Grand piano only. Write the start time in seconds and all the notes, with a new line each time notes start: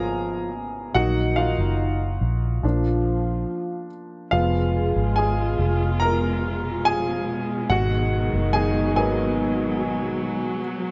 Already playing: G#3 A#3 B3 F#4 G#4 A#4 F#5 G#5 A#5
0.94 F#3 A#3 D#4 F#4 F#5
1.36 F4 F5
2.63 F3 A#3 D4
4.31 F3 G#3 B3 F4 F5
5.16 G#4 G#5
6.00 A#4 A#5
6.85 G#4 G#5
7.70 F#4 F#5
8.53 G#4 G#5
8.96 F#3 A#3 B3 G#4 G#5